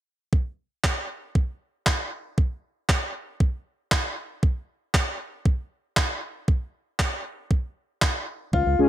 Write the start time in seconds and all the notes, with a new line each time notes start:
0.33 kick
0.84 kick, clap
1.35 kick
1.86 kick, clap
2.38 kick
2.89 kick, clap
3.40 kick
3.92 kick, clap
4.43 kick
4.94 kick, clap
5.45 kick
5.97 kick, clap
6.48 kick
6.99 kick, clap
7.51 kick
8.02 kick, clap
8.53 C#2 F4, kick
8.66 C#2
8.79 C#2 G#3 C#4 F4 G#4